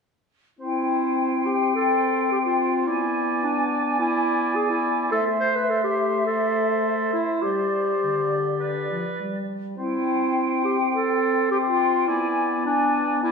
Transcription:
0.59 french horn section C4, clarinet E4, oboe C5, flute section G5
1.46 clarinet G4
1.74 clarinet A4
2.32 clarinet G4
2.45 clarinet F4
2.87 french horn section B3, clarinet E4, oboe D5, flute section G#5
3.44 clarinet D4
3.99 clarinet E4
4.55 clarinet G#4
4.70 clarinet E4
5.10 french horn section A3, clarinet A4, oboe C5, flute section E5
5.40 clarinet C5
5.55 clarinet B4
5.70 clarinet A4
5.84 clarinet G4
6.26 clarinet A4
7.13 clarinet E4
7.41 french horn section G3, clarinet G4, flute section D5
8.04 french horn section D3
8.60 oboe B4
8.90 french horn section F3
9.20 french horn section G3
9.77 french horn section C4, clarinet E4, oboe C5, flute section G5
10.64 clarinet G4
10.93 clarinet A4
11.50 clarinet G4, oboe C5, flute section G5
11.65 clarinet F4
12.07 french horn section B3, clarinet E4, oboe D5, flute section G#5
12.65 clarinet D4, oboe D5, flute section G#5
13.22 clarinet E4, oboe D5, flute section G#5

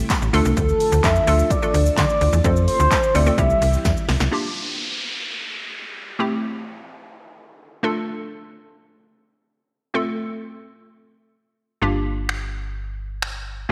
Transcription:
Already playing: string machine C3 G3 A3 E4 G4, synth pluck A3 C4 E4 G4
0.10 kick, clap, closed hi-hat, tambourine, shaker
0.22 fm bass A1, shaker
0.33 fm bass D2, string machine D3 F3 F4 A4, synth pluck A3 D4 F4 A4, open hi-hat, shaker
0.45 fm bass C2, shaker
0.57 fm bass D2, soft synth lead A4, kick, closed hi-hat, shaker
0.69 shaker
0.80 open hi-hat, shaker
0.92 fm bass D2, shaker
1.04 fm bass F2, soft synth lead E5, kick, clap, closed hi-hat, tambourine, shaker
1.15 shaker
1.27 fm bass D2, synth pluck A3 D4 F4 A4, open hi-hat, shaker
1.39 shaker
1.50 soft synth lead D5, kick, closed hi-hat, shaker
1.62 synth pluck A3 D4 F4 A4, shaker
1.74 fm bass D2, open hi-hat, shaker
1.86 shaker
1.98 fm bass D3, soft synth lead D5, kick, clap, closed hi-hat, tambourine, shaker
2.09 shaker
2.21 fm bass D2, open hi-hat, shaker
2.33 fm bass E2, shaker
2.44 fm bass F2, string machine C3, synth pluck A3 C4 F4 A4, soft synth lead C5, kick, closed hi-hat, shaker
2.56 shaker
2.68 soft synth lead C5, open hi-hat, shaker
2.80 fm bass D2, shaker
2.91 kick, clap, closed hi-hat, tambourine, shaker
3.03 shaker
3.14 fm bass D2, synth pluck A3 C4 F4 A4, soft synth lead D5, open hi-hat, shaker
3.26 synth pluck A3 C4 F4 A4, shaker
3.38 fm bass C2, string machine E3 G3 E4 G4, synth pluck G3 C4 E4 G4, soft synth lead E5, kick, closed hi-hat, shaker
3.50 shaker
3.62 fm bass C2, open hi-hat, shaker
3.73 shaker
3.85 fm bass E2, kick, snare, closed hi-hat, tambourine, shaker
3.97 shaker
4.09 fm bass C2, snare, open hi-hat, shaker
4.20 fm bass C2, snare, shaker
4.31 synth pluck A#3 D4 F4 G4, downlifter
6.19 synth pluck A3 C4 E4 G4
7.83 synth pluck A3 D4 F4 A4
9.94 synth pluck A3 C4 F4 A4
11.82 fm bass G1, synth pluck A#3 D4 F4 G4
12.29 finger snap
13.22 finger snap

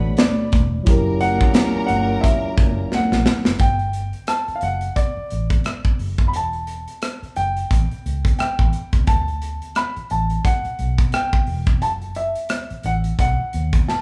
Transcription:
Already playing: fingered electric bass A1, trombone section A2 F#3 D4, tine electric piano B2 A3 D4 D5, violin section B4 B5, grand piano F#5
0.17 grand piano D5, snare, closed hi-hat, muted conga, high conga
0.39 high conga
0.52 fingered electric bass E1, kick, closed hi-hat, low conga
0.83 fingered electric bass F#1, tine electric piano F#3 E4, violin section A#5, kick, closed hi-hat
0.87 trombone section A#2 G3 C#4, tine electric piano G4 A#4, violin section A#4, muted conga, low conga
1.21 grand piano F#5, closed hi-hat, muted conga, high conga
1.41 kick
1.54 snare, closed hi-hat, muted conga, high conga
1.75 muted fingered electric bass stroke
1.87 fingered electric bass G1, grand piano F#5, closed hi-hat
1.91 muted conga, high conga, low conga
2.21 grand piano E5, kick, closed hi-hat
2.44 muted fingered electric bass stroke
2.57 fingered electric bass F#1, kick, closed hi-hat, high conga
2.92 grand piano F#5, muted fingered electric bass stroke, snare, muted conga, high conga
3.12 fingered electric bass A#1, snare, high conga
3.26 snare, low conga
3.45 fingered electric bass F#1, snare
3.59 fingered electric bass G1, grand piano G5, kick, closed hi-hat
3.79 closed hi-hat
3.93 closed hi-hat
4.13 closed hi-hat
4.27 grand piano A5, cross-stick, closed hi-hat
4.48 muted fingered electric bass stroke, closed hi-hat
4.55 grand piano F5
4.61 fingered electric bass F#1, grand piano F#5, closed hi-hat
4.81 closed hi-hat
4.96 grand piano D5, kick, closed hi-hat
5.17 muted fingered electric bass stroke
5.30 fingered electric bass A1, closed hi-hat
5.50 kick, closed hi-hat
5.64 cross-stick, closed hi-hat
5.85 kick
5.99 fingered electric bass F#1, open hi-hat
6.18 kick, cross-stick, closed hi-hat
6.28 grand piano B5
6.33 fingered electric bass E1, grand piano A5, closed hi-hat
6.53 closed hi-hat
6.67 closed hi-hat
6.88 closed hi-hat
7.02 cross-stick, closed hi-hat
7.23 muted fingered electric bass stroke, closed hi-hat
7.36 fingered electric bass F#1, grand piano G5, closed hi-hat
7.57 closed hi-hat
7.71 fingered electric bass A1, kick, closed hi-hat
7.91 muted fingered electric bass stroke, closed hi-hat
8.06 fingered electric bass C#2, closed hi-hat
8.25 kick, closed hi-hat
8.39 grand piano G5, muted fingered electric bass stroke, cross-stick, closed hi-hat
8.59 fingered electric bass A1, kick
8.73 closed hi-hat
8.93 fingered electric bass C#2, kick, cross-stick, closed hi-hat
9.07 fingered electric bass D2, grand piano A5, kick, closed hi-hat
9.28 closed hi-hat
9.42 closed hi-hat
9.62 closed hi-hat
9.75 grand piano B5, cross-stick, closed hi-hat
9.97 muted fingered electric bass stroke, closed hi-hat
10.10 fingered electric bass A1, grand piano A5, closed hi-hat
10.30 closed hi-hat
10.45 grand piano F#5, kick, closed hi-hat
10.65 muted fingered electric bass stroke, closed hi-hat
10.79 fingered electric bass B1, closed hi-hat
10.98 kick, closed hi-hat
11.12 grand piano G5, cross-stick, closed hi-hat
11.33 kick
11.47 fingered electric bass E1, open hi-hat
11.66 kick, cross-stick, closed hi-hat
11.82 fingered electric bass F#1, grand piano A5, closed hi-hat
12.02 closed hi-hat
12.15 grand piano E5, closed hi-hat
12.35 closed hi-hat
12.49 cross-stick, closed hi-hat
12.70 muted fingered electric bass stroke, closed hi-hat
12.83 fingered electric bass A1, grand piano F#5, closed hi-hat
13.04 closed hi-hat
13.19 fingered electric bass B1, grand piano F#5, kick, closed hi-hat
13.40 muted fingered electric bass stroke
13.53 fingered electric bass D#2, closed hi-hat
13.73 kick, closed hi-hat
13.88 grand piano A5, muted fingered electric bass stroke, snare

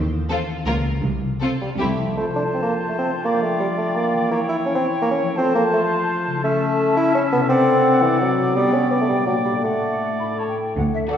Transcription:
Already playing: double bass section D#2, cello section D#2, harp D#3 C4
0.12 harp F4
0.29 viola section C4, harp C4, violin section F4 A4
0.49 harp F4
0.66 cello section C#2, double bass section C#2, harp C#3, viola section A#3, violin section F4 A#4
0.86 harp F4 A#4
1.05 cello section C2, double bass section C2, harp C3
1.23 harp F4
1.41 viola section C4, harp C4, violin section F4 A4
1.61 bassoon G3, harp F4
1.79 cello section C2, double bass section C2, harp C3, bassoon A3, viola section C4, violin section E4 G4
1.97 harp F3 E4 G4
2.04 harp C4
2.08 harp F4
2.13 harp A4
2.17 bassoon A3, clarinet F4, oboe C5, flute section A5
2.36 bassoon D4
2.54 bassoon C4
2.63 bassoon A#3
2.89 bassoon A3
2.99 bassoon C4
3.08 harp F3
3.12 harp A#3
3.17 harp D4
3.21 bassoon A#3, harp G4, oboe D5, flute section G5
3.42 bassoon A3
3.60 bassoon G3
3.78 bassoon A3
3.96 bassoon A#3
4.14 harp E3
4.19 harp A#3
4.23 harp C#4
4.28 bassoon A#3, clarinet E4, harp G4, oboe C#5
4.49 bassoon E4
4.66 bassoon C#4
4.75 bassoon C4
5.02 bassoon A#3
5.11 bassoon C#4
5.21 harp F3
5.25 harp A3
5.29 harp C4
5.34 bassoon C4, clarinet F4, harp A4, oboe C5, flute section A5
5.55 bassoon A#3
5.73 bassoon A3
6.27 harp C#3
6.31 harp A3
6.35 harp E4
6.40 clarinet C#4, harp A4, flute section A5
6.44 bassoon A3, oboe E5
6.97 bassoon E4
7.15 bassoon C#4
7.32 harp C3, bassoon B3
7.37 harp D4
7.41 harp F#4
7.45 clarinet C4, harp A4
7.49 bassoon C4, oboe D5, flute section F#5
8.02 bassoon E3
8.20 bassoon F#3
8.38 harp B2
8.42 harp D4
8.47 harp G4
8.51 harp D5
8.55 bassoon G3, clarinet B3, oboe D5, flute section G5
8.74 bassoon C#4
8.91 bassoon B3, oboe D5, flute section G5
9.01 bassoon A3
9.09 harp A#2, bassoon G3
9.19 harp G4
9.23 bassoon F#3, clarinet A#3, harp D5, oboe D5
9.27 flute section G5
9.45 harp A2, bassoon G3
9.51 harp D4
9.56 harp F#4
9.61 bassoon A3, clarinet A3, harp D5, oboe D5, flute section F#5
10.02 flute section F#5
10.20 harp A2, flute section B5
10.25 harp C#4
10.30 harp E4
10.34 clarinet A3, harp E5
10.39 oboe C#5, flute section A5
10.48 flute section G5
10.76 double bass section D2, cello section D2, harp D3, flute section F#5
10.93 harp D4, flute section E5
11.10 violin section A3 F#4 D5, harp F#4, viola section A4, flute section F#5

